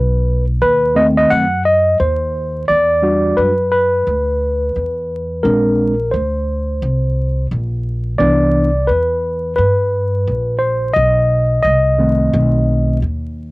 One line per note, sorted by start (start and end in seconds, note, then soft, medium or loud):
0.00 0.58 B1 loud
0.00 0.44 B4 loud
0.62 1.27 D#2 medium
0.62 0.97 B4 loud
0.95 1.44 D#3 medium
0.95 1.44 A3 medium
0.95 1.45 C4 medium
0.95 1.06 D#5 medium
1.17 1.31 D#5 loud
1.30 1.96 F#2 medium
1.30 1.62 F#5 loud
1.65 1.97 D#5 medium
2.00 2.65 D#2 medium
2.00 2.64 C5 medium
2.68 3.34 E2 medium
2.68 3.39 D5 loud
3.02 3.51 G3 soft
3.02 3.52 D4 soft
3.02 3.52 F#4 medium
3.37 4.03 F#2 medium
3.37 3.70 B4 medium
3.72 5.49 B4 medium
4.07 4.72 D2 medium
4.76 5.41 E2 medium
5.43 6.10 A#1 medium
5.43 5.93 G#3 medium
5.43 5.93 C4 soft
5.43 5.93 D4 medium
5.43 6.14 A#4 medium
6.11 6.79 D2 medium
6.11 7.46 C5 medium
6.82 7.47 C2 loud
7.51 8.16 A#1 medium
8.18 8.86 C2 medium
8.18 8.68 E3 medium
8.18 8.68 B3 soft
8.18 8.69 D4 medium
8.18 8.90 D5 medium
8.87 9.54 E2 medium
8.87 9.53 B4 medium
9.56 10.23 G2 loud
9.56 10.56 B4 medium
10.27 10.93 A#1 medium
10.59 10.92 C5 medium
10.94 11.61 B1 loud
10.94 11.61 D#5 loud
11.63 12.30 C2 loud
11.63 12.97 D#5 medium
11.98 12.98 D#3 medium
11.98 12.98 A3 soft
11.98 12.99 C4 medium
12.33 12.99 B1 loud
13.02 13.51 D#2 medium